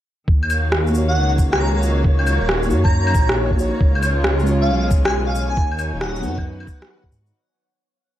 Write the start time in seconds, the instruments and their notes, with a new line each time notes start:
0.26 detuned saw bass D#2, string section D#3, synth texture C#5, kick
0.42 string section C#5, claves
0.49 string section A#3, claves, shaker
0.54 string section F#4 F5
0.72 cross-stick
0.87 synth keys A#3, shaker
0.93 synth keys D#4 F#4, shaker
0.98 synth keys C#5
1.08 digital synth lead F#5
1.16 detuned saw bass C#2
1.38 kick, shaker
1.52 digital synth lead G#5, cross-stick
1.60 digital synth lead A#5
1.75 digital synth lead A#5
1.83 shaker
2.05 kick
2.19 claves
2.27 claves, shaker
2.41 detuned saw bass D#1
2.49 cross-stick
2.63 synth keys A#3, shaker
2.69 detuned saw bass F#2, synth keys D#4 F#4, shaker
2.74 synth keys C#5
2.84 digital synth lead A#5, kick, claves
3.07 claves
3.15 detuned saw bass A#1, kick, shaker
3.29 cross-stick
3.51 kick
3.56 synth keys A#3 D#4 F#4, shaker
3.60 synth keys C#5
3.80 detuned saw bass C#2, string section C#3, kick
3.91 string section F4
3.95 claves
4.03 string section G#3, claves, shaker
4.24 cross-stick
4.39 synth keys G#3, shaker
4.46 synth keys C#4 F4, shaker
4.51 synth keys C#5
4.61 digital synth lead F5, string section G#5
4.69 detuned saw bass B1
4.91 kick, shaker
5.05 digital synth lead G#5, cross-stick
5.27 digital synth lead F5
5.34 digital synth lead F5, shaker
5.49 digital synth lead G#5
5.57 detuned saw bass D#2, string section D#3, kick
5.72 claves
5.79 claves, shaker
5.89 string section D#4
5.94 detuned saw bass D#1
6.01 string section F#4, digital synth lead F#5, cross-stick
6.16 synth keys F#3, shaker
6.22 detuned saw bass F#2, synth keys B3 D#4, shaker
6.27 synth keys B4
6.32 string section B4
6.38 string section F#5, kick, claves
6.60 claves
6.67 kick, shaker
6.82 cross-stick
7.04 kick
7.11 detuned saw bass G#2, shaker
7.26 shaker